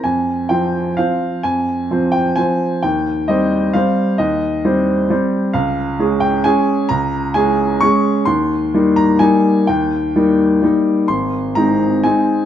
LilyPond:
\new Staff \with { instrumentName = "Upright piano" } { \time 3/4 \key f \minor \tempo 4 = 130 << { aes''4 g''4 f''4 | aes''4. g''8 aes''4 | g''4 ees''4 f''4 | ees''4. r4. |
f''4. g''8 aes''4 | bes''4 aes''4 des'''4 | c'''4. bes''8 aes''4 | g''2. |
c'''4 bes''4 aes''4 | } \\ { f,4 <f c' c''>4 <f c' c''>4 | f,4 <f c' c''>4 <f c' c''>4 | ees,4 <g c' c''>4 <g c' c''>4 | ees,4 <g c' c''>4 <g c' c''>4 |
des,4 <aes des' aes'>4 <aes des' aes'>4 | des,4 <aes des' aes'>4 <aes des' aes'>4 | ees,4 <g bes ees'>4 <g bes ees'>4 | ees,4 <g bes ees'>4 <g bes ees'>4 |
aes,,4 <aes c' ees'>4 <aes c' ees'>4 | } >> }